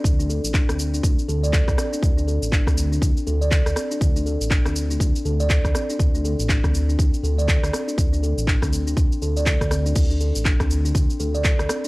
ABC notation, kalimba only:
X:1
M:4/4
L:1/16
Q:"Swing 16ths" 1/4=121
K:Cmix
V:1 name="Kalimba"
z D A z D C z D D z A d A z C D | z D A z D C z D D z A d z2 C D | z D A z D C z D D z A d A z C D | z D A z D C z D D z A d A z C D |
z D A z D C z D D z A d A z C D | z D A z D C z D D z A d A z C D |]